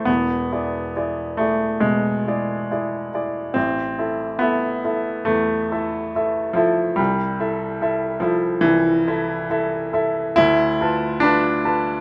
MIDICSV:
0, 0, Header, 1, 2, 480
1, 0, Start_track
1, 0, Tempo, 873362
1, 45, Time_signature, 4, 2, 24, 8
1, 1485, Tempo, 859599
1, 3405, Tempo, 837989
1, 5325, Tempo, 869565
1, 6713, End_track
2, 0, Start_track
2, 0, Title_t, "Grand piano"
2, 0, Program_c, 0, 0
2, 0, Control_c, 0, 64, 127
2, 0, Note_on_c, 0, 40, 41
2, 0, Note_on_c, 0, 57, 73
2, 0, Note_on_c, 0, 60, 70
2, 0, Note_on_c, 0, 64, 39
2, 0, Note_on_c, 0, 69, 37
2, 0, Note_on_c, 0, 72, 40
2, 29, Note_on_c, 0, 59, 80
2, 35, Note_on_c, 0, 28, 45
2, 40, Note_off_c, 0, 40, 0
2, 40, Note_on_c, 0, 40, 50
2, 53, Control_c, 0, 64, 0
2, 56, Note_off_c, 0, 69, 0
2, 56, Note_off_c, 0, 72, 0
2, 58, Note_off_c, 0, 57, 0
2, 58, Note_off_c, 0, 60, 0
2, 59, Note_off_c, 0, 64, 0
2, 136, Control_c, 0, 64, 127
2, 273, Note_off_c, 0, 28, 0
2, 275, Note_off_c, 0, 40, 0
2, 288, Note_on_c, 0, 64, 36
2, 288, Note_on_c, 0, 68, 36
2, 290, Note_on_c, 0, 74, 40
2, 505, Note_off_c, 0, 64, 0
2, 506, Note_off_c, 0, 68, 0
2, 506, Note_off_c, 0, 74, 0
2, 529, Note_on_c, 0, 64, 39
2, 529, Note_on_c, 0, 68, 39
2, 532, Note_on_c, 0, 74, 43
2, 745, Note_off_c, 0, 64, 0
2, 745, Note_off_c, 0, 68, 0
2, 746, Note_off_c, 0, 74, 0
2, 755, Note_on_c, 0, 57, 68
2, 758, Note_off_c, 0, 59, 0
2, 768, Note_on_c, 0, 64, 32
2, 769, Note_on_c, 0, 68, 38
2, 772, Note_on_c, 0, 74, 37
2, 984, Note_off_c, 0, 64, 0
2, 985, Note_off_c, 0, 68, 0
2, 986, Note_off_c, 0, 74, 0
2, 991, Note_on_c, 0, 56, 75
2, 999, Note_off_c, 0, 57, 0
2, 1003, Note_on_c, 0, 47, 46
2, 1237, Note_off_c, 0, 47, 0
2, 1251, Note_on_c, 0, 64, 35
2, 1252, Note_on_c, 0, 68, 38
2, 1255, Note_on_c, 0, 74, 45
2, 1466, Note_off_c, 0, 64, 0
2, 1467, Note_off_c, 0, 68, 0
2, 1468, Note_off_c, 0, 74, 0
2, 1491, Note_on_c, 0, 64, 38
2, 1494, Note_on_c, 0, 74, 42
2, 1495, Note_on_c, 0, 68, 37
2, 1706, Note_off_c, 0, 64, 0
2, 1708, Note_off_c, 0, 74, 0
2, 1709, Note_off_c, 0, 68, 0
2, 1729, Note_on_c, 0, 64, 42
2, 1732, Note_on_c, 0, 68, 37
2, 1735, Note_on_c, 0, 74, 45
2, 1944, Note_off_c, 0, 64, 0
2, 1945, Note_off_c, 0, 68, 0
2, 1947, Note_off_c, 0, 74, 0
2, 1952, Note_on_c, 0, 60, 76
2, 1958, Note_off_c, 0, 56, 0
2, 1963, Note_on_c, 0, 33, 57
2, 1974, Control_c, 0, 64, 0
2, 2074, Control_c, 0, 64, 127
2, 2194, Note_off_c, 0, 33, 0
2, 2202, Note_on_c, 0, 64, 43
2, 2206, Note_on_c, 0, 69, 39
2, 2208, Note_on_c, 0, 76, 42
2, 2418, Note_off_c, 0, 64, 0
2, 2420, Note_off_c, 0, 69, 0
2, 2421, Note_off_c, 0, 76, 0
2, 2426, Note_on_c, 0, 59, 80
2, 2434, Note_off_c, 0, 60, 0
2, 2438, Note_on_c, 0, 64, 39
2, 2441, Note_on_c, 0, 69, 40
2, 2446, Note_on_c, 0, 76, 53
2, 2656, Note_off_c, 0, 64, 0
2, 2658, Note_off_c, 0, 69, 0
2, 2660, Note_off_c, 0, 76, 0
2, 2679, Note_on_c, 0, 64, 36
2, 2682, Note_on_c, 0, 69, 39
2, 2686, Note_on_c, 0, 76, 43
2, 2897, Note_off_c, 0, 64, 0
2, 2898, Note_off_c, 0, 69, 0
2, 2900, Note_off_c, 0, 76, 0
2, 2908, Note_on_c, 0, 57, 80
2, 2913, Note_off_c, 0, 59, 0
2, 2922, Note_on_c, 0, 40, 48
2, 3157, Note_off_c, 0, 40, 0
2, 3168, Note_on_c, 0, 64, 42
2, 3169, Note_on_c, 0, 69, 45
2, 3172, Note_on_c, 0, 76, 47
2, 3385, Note_off_c, 0, 64, 0
2, 3385, Note_off_c, 0, 69, 0
2, 3387, Note_off_c, 0, 76, 0
2, 3412, Note_on_c, 0, 64, 39
2, 3417, Note_on_c, 0, 69, 43
2, 3418, Note_on_c, 0, 76, 49
2, 3630, Note_off_c, 0, 64, 0
2, 3631, Note_on_c, 0, 53, 79
2, 3632, Note_off_c, 0, 69, 0
2, 3633, Note_off_c, 0, 76, 0
2, 3643, Note_off_c, 0, 57, 0
2, 3644, Note_on_c, 0, 64, 50
2, 3648, Note_on_c, 0, 69, 50
2, 3653, Note_on_c, 0, 76, 48
2, 3866, Note_off_c, 0, 64, 0
2, 3868, Note_off_c, 0, 69, 0
2, 3871, Note_off_c, 0, 76, 0
2, 3874, Note_on_c, 0, 55, 78
2, 3882, Note_off_c, 0, 53, 0
2, 3891, Note_on_c, 0, 36, 60
2, 3901, Control_c, 0, 64, 0
2, 3996, Control_c, 0, 64, 127
2, 4121, Note_off_c, 0, 36, 0
2, 4123, Note_on_c, 0, 64, 41
2, 4126, Note_on_c, 0, 69, 46
2, 4128, Note_on_c, 0, 76, 49
2, 4336, Note_off_c, 0, 64, 0
2, 4338, Note_off_c, 0, 69, 0
2, 4339, Note_off_c, 0, 76, 0
2, 4364, Note_on_c, 0, 69, 48
2, 4367, Note_on_c, 0, 64, 46
2, 4369, Note_on_c, 0, 76, 54
2, 4576, Note_off_c, 0, 69, 0
2, 4578, Note_off_c, 0, 64, 0
2, 4578, Note_off_c, 0, 76, 0
2, 4585, Note_on_c, 0, 53, 84
2, 4589, Note_off_c, 0, 55, 0
2, 4594, Note_on_c, 0, 64, 42
2, 4598, Note_on_c, 0, 69, 44
2, 4598, Note_on_c, 0, 76, 51
2, 4815, Note_off_c, 0, 64, 0
2, 4817, Note_off_c, 0, 69, 0
2, 4817, Note_off_c, 0, 76, 0
2, 4819, Note_on_c, 0, 52, 96
2, 4833, Note_off_c, 0, 53, 0
2, 4835, Note_on_c, 0, 36, 54
2, 5074, Note_off_c, 0, 36, 0
2, 5086, Note_on_c, 0, 64, 53
2, 5086, Note_on_c, 0, 69, 50
2, 5090, Note_on_c, 0, 76, 55
2, 5302, Note_off_c, 0, 64, 0
2, 5302, Note_off_c, 0, 69, 0
2, 5304, Note_off_c, 0, 76, 0
2, 5329, Note_on_c, 0, 64, 43
2, 5334, Note_on_c, 0, 69, 51
2, 5334, Note_on_c, 0, 76, 56
2, 5545, Note_off_c, 0, 64, 0
2, 5548, Note_off_c, 0, 69, 0
2, 5548, Note_off_c, 0, 76, 0
2, 5567, Note_on_c, 0, 64, 52
2, 5568, Note_on_c, 0, 69, 54
2, 5573, Note_on_c, 0, 76, 51
2, 5794, Note_off_c, 0, 64, 0
2, 5795, Note_off_c, 0, 69, 0
2, 5798, Note_off_c, 0, 76, 0
2, 5803, Note_on_c, 0, 64, 116
2, 5806, Note_off_c, 0, 52, 0
2, 5815, Note_on_c, 0, 38, 70
2, 5826, Control_c, 0, 64, 0
2, 5908, Control_c, 0, 64, 127
2, 6049, Note_off_c, 0, 38, 0
2, 6052, Note_on_c, 0, 65, 51
2, 6053, Note_on_c, 0, 71, 52
2, 6058, Note_on_c, 0, 81, 50
2, 6266, Note_off_c, 0, 65, 0
2, 6267, Note_off_c, 0, 71, 0
2, 6269, Note_on_c, 0, 62, 96
2, 6270, Note_off_c, 0, 81, 0
2, 6282, Note_on_c, 0, 65, 56
2, 6284, Note_on_c, 0, 71, 57
2, 6285, Note_off_c, 0, 64, 0
2, 6286, Note_on_c, 0, 81, 60
2, 6501, Note_off_c, 0, 65, 0
2, 6502, Note_off_c, 0, 71, 0
2, 6503, Note_off_c, 0, 81, 0
2, 6515, Note_on_c, 0, 65, 47
2, 6517, Note_on_c, 0, 71, 51
2, 6518, Note_on_c, 0, 81, 51
2, 6713, Note_off_c, 0, 62, 0
2, 6713, Note_off_c, 0, 65, 0
2, 6713, Note_off_c, 0, 71, 0
2, 6713, Note_off_c, 0, 81, 0
2, 6713, End_track
0, 0, End_of_file